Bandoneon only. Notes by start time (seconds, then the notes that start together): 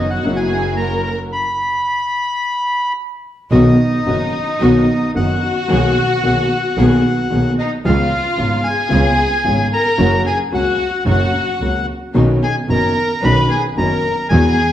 Already playing: D#5
0.10 F#5
0.36 G#5
0.77 A#5
1.03 A#5
1.33 B5
3.51 D#5
5.16 F#5
7.59 D#5
7.85 F5
8.64 G#5
9.74 A#5
10.26 G#5
10.55 F#5
11.10 F#5
12.44 G#5
12.70 A#5
13.24 B5
13.51 G#5
13.78 A#5
14.29 G#5